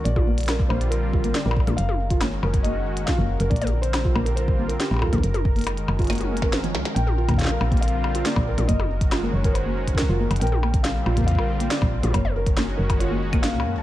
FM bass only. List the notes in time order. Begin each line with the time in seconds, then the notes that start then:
0.06 A#1
0.70 A#1
1.46 A#1
1.67 A#1
1.78 F#1
2.43 F#1
3.19 F#1
3.40 F#1
3.51 A#1
4.16 A#1
4.91 A#1
5.13 A#1
5.24 F#1
5.88 F#1
6.75 C#2
6.96 A#1
7.61 A#1
8.36 A#1
8.58 A#1
8.69 F#1
9.34 F#1
10.09 F#1
10.31 F#1
10.42 A#1
11.06 A#1
11.82 A#1
12.03 A#1
12.14 F#1
12.79 F#1
13.54 C#2
13.65 F#2
13.76 C#2